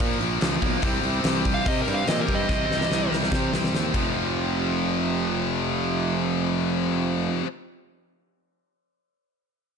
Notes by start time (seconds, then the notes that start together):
Already playing: A#2 F3 A#3
0.00 A#2, kick
0.21 A#1, open hi-hat
0.41 C#2, snare, open hi-hat
0.61 B1 A#2 F3 A#3, kick, open hi-hat
0.82 C2 C3 G3 C4, kick, open hi-hat
1.03 C2, open hi-hat
1.24 C2, snare, open hi-hat
1.45 kick, open hi-hat
1.54 F5
1.66 C3 D#5, kick, open hi-hat
1.82 A#4
1.87 G2, open hi-hat
1.94 F5
2.08 A#2 D#5, snare, open hi-hat
2.21 A#4
2.27 G2 C3 G3 C4, kick, open hi-hat
2.35 D#5
2.48 C2 C3 G3 C4, kick, snare
2.69 C2, snare
2.81 snare
2.90 C2, snare
3.12 C2, snare
3.23 snare
3.31 C3, kick, snare
3.52 C2, snare
3.64 snare
3.73 D#2, snare
3.92 F1 F2 C3, kick, crash
3.96 F3